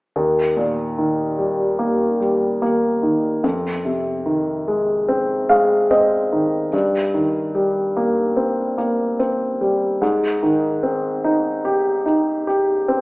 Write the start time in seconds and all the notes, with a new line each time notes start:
0.16 D#2
0.57 A#2
0.98 D#3
1.39 G3
1.79 A#3
2.20 G3
2.62 A#3
3.03 D#3
3.44 F2
3.85 C3
4.26 D#3
4.68 G#3
5.08 C4
5.49 G#3 F5
5.91 C4 D#5
6.32 D#3
6.73 G2
7.14 D#3
7.55 G3
7.97 A#3
8.37 C4
8.78 A#3
9.19 C4
9.61 G3
10.01 G#2
10.43 D#3
10.83 C4
11.24 D#4
11.65 G4
12.06 D#4
12.47 G4
12.88 C4